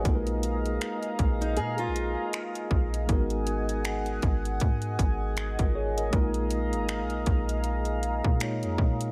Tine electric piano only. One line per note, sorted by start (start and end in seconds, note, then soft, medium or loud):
0.00 3.04 G#3 medium
0.00 0.26 F#4 medium
0.00 0.26 B4 medium
0.05 3.05 A#3 medium
0.05 3.06 D#4 medium
0.05 3.06 F4 medium
0.05 0.14 A4 medium
0.15 3.10 A#4 medium
3.07 6.08 G#3 medium
3.07 3.16 A#3 medium
3.07 6.09 D#4 medium
3.07 4.96 F#4 medium
3.12 6.12 B3 medium
3.12 4.97 A#4 medium
5.60 5.75 F4 medium
5.60 5.74 A#4 medium
5.75 5.96 G#4 medium
5.75 5.96 C#5 medium
5.98 6.14 A#4 medium
5.98 6.33 D#5 medium
6.11 8.36 G#3 medium
6.11 8.36 A#3 medium
6.11 8.37 D#4 medium
6.11 8.37 F4 medium
6.16 8.38 A#4 medium
8.40 9.12 G#3 medium
8.40 9.12 A#3 medium
8.40 9.12 D#4 medium
8.40 9.12 F4 soft
8.40 9.12 C#5 medium